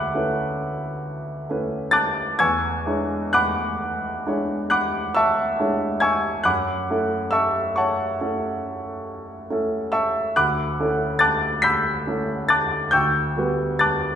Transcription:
0.00 2.42 D2 medium
0.00 0.11 A3 soft
0.00 0.11 C#4 soft
0.00 0.11 E4 soft
0.00 0.12 B4 soft
0.00 2.43 D5 medium
0.00 2.43 E5 medium
0.00 1.91 F#5 medium
0.00 2.43 G5 medium
0.00 1.93 A5 medium
0.00 2.43 B5 medium
0.00 2.40 C#6 medium
0.00 1.93 D6 medium
0.00 2.40 E6 medium
0.00 1.92 F#6 loud
0.15 1.46 A3 soft
0.15 1.46 C#4 soft
0.15 1.46 E4 soft
0.15 1.47 B4 soft
1.49 2.36 A3 soft
1.49 2.37 C#4 soft
1.49 2.37 E4 soft
1.49 2.37 B4 soft
1.91 2.36 A5 medium
1.91 2.36 D6 medium
1.91 2.36 F#6 medium
1.91 2.39 A6 loud
2.39 2.85 E2 medium
2.39 3.30 G#5 medium
2.39 3.30 C#6 medium
2.39 3.30 E6 medium
2.39 3.33 G#6 loud
2.86 4.22 G#3 soft
2.86 4.22 D4 soft
2.86 4.22 E4 soft
2.86 4.23 C#5 soft
3.33 4.67 F#5 medium
3.33 4.67 B5 medium
3.33 4.67 D6 medium
3.33 4.68 F#6 loud
4.27 5.55 G#3 soft
4.27 5.55 D4 soft
4.27 5.55 E4 soft
4.27 5.55 C#5 soft
4.70 5.12 F#5 medium
4.70 5.12 B5 medium
4.70 5.12 D6 medium
4.70 5.14 F#6 medium
5.15 5.99 E5 medium
5.15 5.98 A5 medium
5.15 5.98 C#6 medium
5.15 6.00 E6 loud
5.60 6.41 G#3 soft
5.60 6.41 D4 soft
5.60 6.42 E4 soft
5.60 6.42 C#5 soft
6.00 6.42 G#5 medium
6.00 6.42 C#6 medium
6.00 6.41 E6 medium
6.00 6.44 G#6 medium
6.43 6.87 F#2 medium
6.43 7.28 F#5 medium
6.43 7.28 B5 medium
6.43 7.28 D6 medium
6.43 7.31 F#6 medium
6.90 8.16 A3 soft
6.90 8.16 C#4 soft
6.90 8.16 E4 soft
6.90 8.16 A4 soft
7.31 7.72 E5 medium
7.31 7.72 A5 medium
7.31 7.73 C#6 medium
7.31 7.75 E6 medium
7.76 9.46 C#5 medium
7.76 9.46 F#5 medium
7.76 9.46 A5 medium
7.76 9.49 C#6 medium
8.21 9.46 A3 soft
8.21 9.46 C#4 soft
8.21 9.46 E4 soft
8.21 9.46 A4 soft
9.50 10.33 A3 soft
9.50 10.33 C#4 soft
9.50 10.34 E4 soft
9.50 10.34 A4 soft
9.92 10.33 E5 medium
9.92 10.33 A5 medium
9.92 10.33 C#6 medium
9.92 10.36 E6 medium
10.36 10.78 D2 medium
10.36 11.17 F#5 medium
10.36 11.17 B5 medium
10.36 11.17 D6 medium
10.36 11.19 F#6 medium
10.80 12.02 A3 soft
10.80 12.02 C#4 soft
10.80 12.02 E4 soft
10.80 12.03 A4 soft
11.19 11.60 A5 medium
11.19 11.60 D6 medium
11.19 11.60 F#6 medium
11.19 11.62 A6 loud
11.62 12.44 B5 medium
11.62 12.44 E6 medium
11.62 12.44 G6 medium
11.62 12.47 B6 loud
12.07 12.88 A3 soft
12.07 12.88 C#4 soft
12.07 12.89 E4 soft
12.07 12.89 A4 soft
12.48 12.89 A5 medium
12.48 12.89 D6 medium
12.48 12.89 F#6 medium
12.48 12.92 A6 medium
12.91 13.35 D2 medium
12.91 13.76 G5 medium
12.91 13.76 C#6 medium
12.91 13.76 E6 medium
12.91 13.80 G6 medium
13.37 14.15 G3 soft
13.37 14.15 B3 soft
13.37 14.15 F#4 soft
13.37 14.15 B4 soft
13.79 14.15 A5 medium
13.79 14.15 D6 medium
13.79 14.15 F#6 medium
13.79 14.15 A6 medium

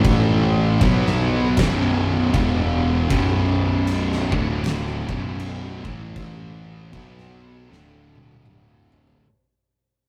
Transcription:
0.00 0.77 A1 loud
0.00 0.80 A2 medium
0.00 0.80 E3 loud
0.00 0.80 A3 loud
0.04 kick loud
0.04 crash medium
0.81 1.54 B1 loud
0.81 1.57 B2 loud
0.81 1.57 F#3 loud
0.81 1.57 B3 loud
0.81 kick loud
0.81 crash medium
1.06 snare soft
1.57 2.30 B0 loud
1.57 2.33 B1 loud
1.57 2.33 F#2 loud
1.57 2.33 B2 loud
1.57 kick loud
1.57 snare loud
1.57 crash medium
2.33 3.06 E1 loud
2.33 3.09 E2 medium
2.33 3.09 B2 loud
2.33 3.10 E3 loud
2.33 kick loud
2.33 crash medium
3.10 4.28 B0 medium
3.10 4.31 B1 loud
3.10 4.31 F#2 loud
3.10 4.31 B2 loud
3.10 kick loud
3.10 crash medium
3.87 crash medium
4.12 snare soft
4.31 5.05 D1 loud
4.31 5.07 D2 medium
4.31 5.07 A2 medium
4.31 5.07 D3 loud
4.31 kick loud
4.64 snare loud
4.64 crash medium
5.07 5.81 B0 loud
5.07 5.83 B1 medium
5.07 5.84 F#2 loud
5.07 5.84 B2 loud
5.07 kick loud
5.40 crash medium
5.84 6.89 A1 loud
5.84 6.92 A2 medium
5.84 6.92 E3 loud
5.84 6.93 A3 loud
5.84 kick loud
6.16 kick loud
6.16 crash medium
6.93 7.66 B1 loud
6.93 7.69 B2 loud
6.93 7.69 F#3 loud
6.93 7.69 B3 loud
6.93 kick loud
6.93 crash medium
7.18 snare soft
7.69 9.19 D1 medium
7.69 9.22 D2 loud
7.69 9.23 A2 loud
7.69 9.23 D3 loud
7.69 snare medium
8.15 high tom medium
8.31 high tom medium
8.46 mid tom loud
8.92 floor tom loud
9.07 floor tom loud

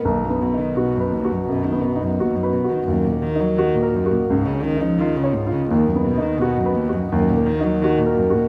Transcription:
0.00 2.87 B3 medium
0.00 2.83 D#5 medium
0.05 1.43 B1 medium
0.05 0.25 D#2 medium
0.05 4.29 F#4 medium
0.24 0.43 F#2 medium
0.30 0.67 B3 medium
0.41 0.61 B2 medium
0.53 0.91 D#4 medium
0.59 0.79 D#3 medium
0.77 0.97 B2 medium
0.77 1.14 F#4 medium
0.96 1.14 F#2 medium
1.00 1.38 B4 medium
1.12 1.33 D#2 medium
1.24 1.62 F#4 medium
1.32 1.48 F#2 medium
1.48 1.86 F#2 medium
1.48 1.66 B2 medium
1.65 1.85 D#3 medium
1.72 2.09 B3 medium
1.84 2.04 B2 medium
1.96 2.32 D#4 medium
2.02 2.21 F#2 medium
2.20 2.37 D#2 medium
2.20 2.56 F#4 medium
2.35 2.55 F#2 medium
2.43 2.79 B4 medium
2.53 2.72 B2 medium
2.64 2.87 F#4 medium
2.71 2.86 D#3 medium
2.87 4.25 D#2 medium
2.87 3.06 F#2 medium
2.87 4.28 A#3 medium
2.87 8.48 D#5 medium
3.05 3.23 A#2 medium
3.12 3.49 A#3 medium
3.22 3.41 D#3 medium
3.35 3.73 D#4 medium
3.40 3.59 F#3 medium
3.58 3.76 D#3 medium
3.58 3.96 F#4 medium
3.75 3.95 A#2 medium
3.82 4.20 A#4 medium
3.93 4.13 F#2 medium
4.06 4.29 F#4 medium
4.11 4.29 A#2 medium
4.29 5.67 C#2 medium
4.29 4.46 G#2 medium
4.29 5.71 G#3 medium
4.29 5.70 F4 medium
4.45 4.64 C#3 medium
4.53 4.90 C#4 medium
4.62 4.83 D#3 medium
4.77 5.14 D#4 medium
4.81 5.00 F3 medium
4.99 5.18 D#3 medium
4.99 5.38 F4 medium
5.17 5.36 C#3 medium
5.24 5.61 C#5 medium
5.35 5.53 G#2 medium
5.47 5.70 F4 medium
5.52 5.69 C#3 medium
5.70 5.88 D#2 medium
5.70 7.08 D#2 medium
5.70 7.12 B3 medium
5.70 8.48 F#4 medium
5.87 6.06 F#2 medium
5.95 6.32 B3 medium
6.05 6.24 B2 medium
6.18 6.55 D#4 medium
6.22 6.41 D#3 medium
6.40 6.59 B2 medium
6.40 6.79 F#4 medium
6.57 6.76 F#2 medium
6.66 7.03 B4 medium
6.74 6.95 D#2 medium
6.89 7.12 F#4 medium
6.93 7.10 F#2 medium
7.11 8.48 D#2 medium
7.11 7.30 F#2 medium
7.11 8.48 A#3 medium
7.29 7.48 A#2 medium
7.36 7.74 A#3 medium
7.46 7.65 D#3 medium
7.60 7.83 F#3 medium
7.60 7.98 D#4 medium
7.82 8.00 D#3 medium
7.82 8.21 F#4 medium
7.99 8.18 A#2 medium
8.06 8.44 A#4 medium
8.16 8.37 F#2 medium
8.30 8.48 F#4 medium
8.35 8.48 A#2 medium

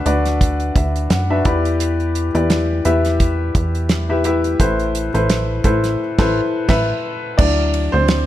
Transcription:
0.00 1.47 D3 medium
0.00 0.06 D4 medium
0.00 0.06 F#4 medium
0.00 0.06 B4 medium
0.00 0.06 D5 medium
0.00 0.76 E5 medium
0.06 0.72 D2 medium
0.06 1.18 D4 medium
0.06 1.19 F#4 medium
0.06 1.19 B4 medium
0.06 1.19 D5 medium
0.06 closed hi-hat medium
0.26 snare soft
0.26 closed hi-hat soft
0.41 kick medium
0.41 closed hi-hat medium
0.60 closed hi-hat soft
0.76 1.08 D2 loud
0.76 1.08 E5 medium
0.76 kick medium
0.76 closed hi-hat medium
0.96 closed hi-hat soft
1.10 1.43 F#2 medium
1.10 1.29 F#5 medium
1.10 snare loud
1.10 closed hi-hat medium
1.30 1.44 D4 medium
1.30 1.44 F#4 medium
1.30 1.44 B4 medium
1.30 1.44 E5 medium
1.30 1.44 A5 medium
1.45 2.31 E2 medium
1.45 2.46 E3 medium
1.45 2.26 E4 medium
1.45 2.27 G4 medium
1.45 2.27 B4 medium
1.45 2.26 D5 medium
1.45 1.78 B5 medium
1.45 kick medium
1.45 closed hi-hat medium
1.65 closed hi-hat soft
1.80 closed hi-hat medium
2.00 closed hi-hat soft
2.15 closed hi-hat medium
2.35 2.81 E2 loud
2.35 2.81 E4 medium
2.35 2.81 G4 medium
2.35 2.81 B4 medium
2.35 2.81 D5 medium
2.35 closed hi-hat soft
2.50 snare loud
2.50 closed hi-hat medium
2.85 3.51 E2 medium
2.85 3.98 E4 medium
2.85 3.98 G4 medium
2.85 3.98 B4 medium
2.85 3.98 E5 medium
2.85 closed hi-hat medium
3.05 snare soft
3.05 closed hi-hat medium
3.20 kick medium
3.20 closed hi-hat medium
3.55 4.56 E2 loud
3.55 kick medium
3.55 closed hi-hat medium
3.75 closed hi-hat soft
3.89 snare loud
3.89 closed hi-hat medium
4.09 4.23 E4 medium
4.09 4.23 G4 medium
4.09 4.24 B4 medium
4.09 4.24 E5 medium
4.24 4.57 E4 medium
4.24 4.57 G4 medium
4.24 4.57 B4 medium
4.24 4.57 E5 medium
4.24 closed hi-hat medium
4.44 closed hi-hat soft
4.60 5.10 A1 medium
4.60 5.60 A2 medium
4.60 5.09 E4 medium
4.60 5.09 A4 medium
4.60 5.09 B4 medium
4.60 5.09 C5 medium
4.60 kick loud
4.60 closed hi-hat medium
4.80 closed hi-hat soft
4.95 closed hi-hat medium
5.14 5.61 A1 medium
5.14 5.60 E4 medium
5.14 5.60 A4 medium
5.14 5.61 B4 medium
5.14 5.61 C5 medium
5.14 closed hi-hat soft
5.30 snare loud
5.30 closed hi-hat medium
5.64 5.97 A1 medium
5.64 5.99 E4 medium
5.64 5.99 A4 medium
5.64 5.99 B4 medium
5.64 5.99 C5 medium
5.64 kick medium
5.64 closed hi-hat medium
5.84 snare soft
5.84 closed hi-hat medium
6.18 6.42 A1 loud
6.18 6.42 E4 loud
6.18 6.42 A4 loud
6.18 6.42 B4 medium
6.18 6.42 C5 loud
6.18 kick loud
6.18 snare loud
6.18 crash medium
6.69 6.93 A1 medium
6.69 6.94 B4 loud
6.69 6.93 E5 loud
6.69 kick loud
6.69 snare loud
6.69 crash medium
7.38 7.89 D2 loud
7.38 7.87 F#3 medium
7.38 7.90 D4 medium
7.38 7.87 E4 medium
7.38 7.94 D5 medium
7.38 kick loud
7.38 crash loud
7.74 ride medium
7.92 8.26 D2 loud
7.92 8.26 C4 medium
7.92 8.26 C5 loud
8.08 snare loud
8.08 ride medium

